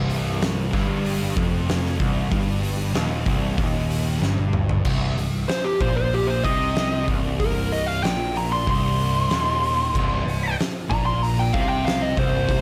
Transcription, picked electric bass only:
Already playing: C1
0.73 G1
1.37 F1
2.00 C1
2.32 G1
2.95 D#1
3.26 C1
3.58 D#1
4.20 G1
4.85 C1
5.15 C1
5.80 A#1
6.44 C2
7.08 C1
8.02 A#1
8.67 C1
9.29 D#1
9.95 C1
10.25 C1
10.90 A#1
11.54 C2
12.18 C1

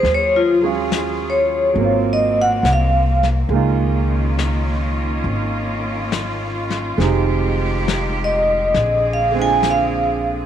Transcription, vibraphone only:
0.14 C#5
0.36 F4
1.30 C#5
2.13 D#5
2.42 F#5
2.73 F5
8.24 D#5
9.14 F5
9.42 G#5
9.70 F5

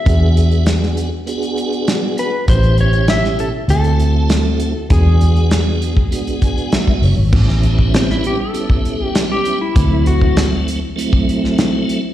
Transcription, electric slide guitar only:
Already playing: E5
2.19 B4
2.49 C5
2.81 C#5
3.10 E5
3.40 A4
3.70 A4
4.92 G#4
7.96 C4
8.11 E4
8.27 G4
8.40 A4
9.04 G4
9.32 G4
9.61 E4
10.07 F#4

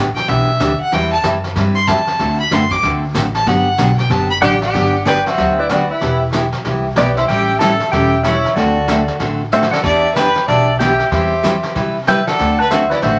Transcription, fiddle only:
0.15 G5
0.28 E5
0.80 F#5
0.93 G5
1.12 A5
1.75 C6
1.88 A5
2.40 B5
2.53 C6
2.71 D6
3.35 A5
3.47 F#5
3.98 G5
4.11 A5
4.30 B5
4.44 G4
4.64 G4
5.07 B4
5.26 F#4
5.59 E4
5.71 F#4
5.90 E4
6.96 G4
7.16 E4
7.28 G4
7.60 A4
7.92 G4
8.24 E4
8.55 F#4
9.52 F#4
9.72 A4
9.84 D5
10.15 B4
10.48 D5
10.79 G4
11.12 G4
12.08 B4
12.28 A4
12.61 B4
12.72 F#4
12.93 E4
13.04 F#4

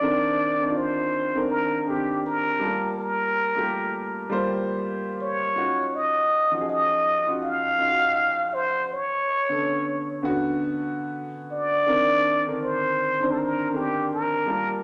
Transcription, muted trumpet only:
Already playing: D5
0.77 C5
1.50 A#4
1.88 G4
2.26 A#4
2.99 A#4
5.22 C#5
5.95 D#5
6.69 D#5
7.44 F5
8.54 C5
8.93 C#5
11.52 D5
12.64 C5
13.32 A4
13.38 A#4
13.76 G4
14.14 A#4

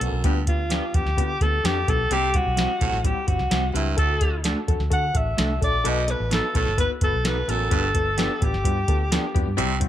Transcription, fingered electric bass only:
0.01 B1
0.12 B1
0.24 D2
0.95 E2
1.06 D2
1.17 D3
1.41 D2
1.64 F2
1.88 B1
2.11 C2
2.46 B1
2.81 C2
2.93 A1
3.28 G1
3.39 C2
3.51 C2
3.75 C#2
3.98 D2
4.68 E2
4.80 D2
4.91 D3
5.15 A1
5.38 C2
5.62 A#1
5.85 B1
6.20 A1
6.55 B1
6.67 G1
7.02 F#1
7.13 B1
7.48 A1
7.72 G1
8.42 A1
8.54 G1
8.65 G2
8.88 D2
9.35 F2
9.47 G2
9.58 C2

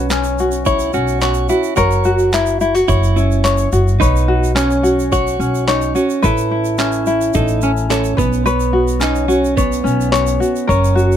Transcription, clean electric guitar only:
Already playing: C#4
0.66 E4
0.94 F#4
1.22 F#4
1.50 E4
1.76 F#4
2.88 E4
3.16 C#4
4.00 D#4
4.56 C#4
5.13 F#4
5.68 D#4
5.96 C#4
6.25 E4
6.79 E4
7.35 D#4
7.63 C#4
7.91 C#4
8.19 B3
9.03 D#4
9.28 C#4
9.57 B3
10.70 C#4

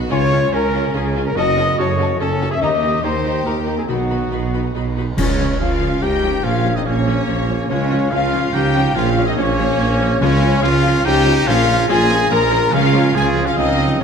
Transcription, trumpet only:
0.12 C#5
0.54 A#4
0.96 G#4
1.27 A#4
1.37 D#5
1.79 C#5
2.21 A4
2.51 E5
2.62 D#5
3.04 C5
3.46 A#4
3.78 G#4
3.89 F#4
5.17 C#4
5.61 F4
6.03 G4
6.44 F4
6.75 D#4
6.86 C#4
7.70 C#4
8.13 F4
8.55 G4
8.97 F4
9.28 D#4
9.37 C#4
10.21 C#4
10.63 F4
11.05 G4
11.47 F4
11.89 G#4
12.32 A#4
12.74 F4
13.15 G#4
13.47 F4
13.59 D#4

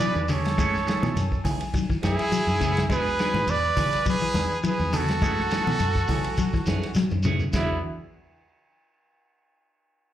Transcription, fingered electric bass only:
0.00 E3
0.15 E2
0.58 F#2
1.03 B2
1.16 F#2
2.03 F#2
2.32 F#3
2.47 F#2
2.90 E2
3.34 G#2
3.47 E2
4.34 E2
4.63 E3
4.79 E2
5.22 F#2
5.67 B2
5.80 F#2
6.67 F#2
6.96 F#3
7.11 F#2
7.53 E2

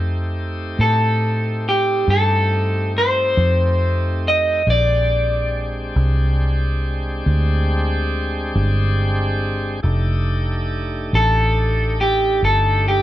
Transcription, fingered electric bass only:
Already playing: F2
0.79 A2
2.08 G2
3.37 F2
4.67 A#1
5.96 C2
7.26 D2
8.55 G1
9.84 F1
11.13 A1
12.43 G1

